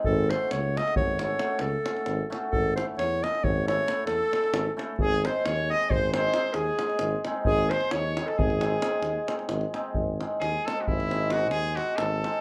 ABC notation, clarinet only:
X:1
M:11/8
L:1/16
Q:1/4=133
K:none
V:1 name="Clarinet"
A2 ^B2 ^c2 ^d2 c2 c4 A6 z2 | A2 ^B2 ^c2 ^d2 c2 c4 A6 z2 | ^G2 ^B2 ^c2 ^d2 B2 B4 G6 z2 | ^G2 ^B2 ^c3 A G8- G2 z4 |
z16 z6 |]